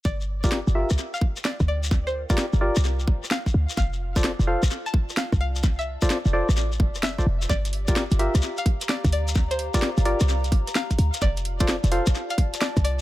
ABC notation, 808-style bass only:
X:1
M:4/4
L:1/16
Q:"Swing 16ths" 1/4=129
K:Gm
V:1 name="808-style bass" clef=bass
G,,,4- G,,, G,,,2 C,, z4 z D,,3- | D,,3 z2 G,,,2 C,,3 G,,, z3 D,, z | F,,,4- F,,, F,,,2 A,,, z4 z C,,3- | C,,3 z2 F,,,2 A,,,3 F,,,3 A,,, F,,,2 |
G,,,4- G,,, G,,,2 C,, z4 z D,,3- | D,,3 z2 G,,,2 C,,3 G,,, z3 D,, z | F,,,4- F,,, F,,,2 A,,, z4 z C,,3 |]